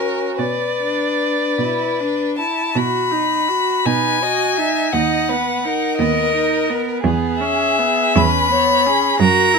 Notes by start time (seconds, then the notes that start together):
Already playing: F#2 C#4 F#4 A#4
0.39 B2 B4 D5
0.82 D4
1.59 B2 E4
2.00 D4
2.38 E4 A5
2.75 B2 F#4 B5
3.12 D#4
3.48 F#4
3.86 B2 D#4 B4 G#5
4.22 F#4 D#5
4.58 D#4 E5
4.92 D#2 D#4 D#5 F#5
5.29 B3 B4
5.65 D#4 A#4
5.98 D#2 B3 D#5
6.35 D#4
6.70 B3
7.04 E2 B3 G#4
7.40 C#4 E5
7.79 B3
8.16 E2 C#4 B4 B5
8.52 B3 C#5
8.86 C#4 G#4
9.19 F#2 F#4 A#4 A#5
9.54 E4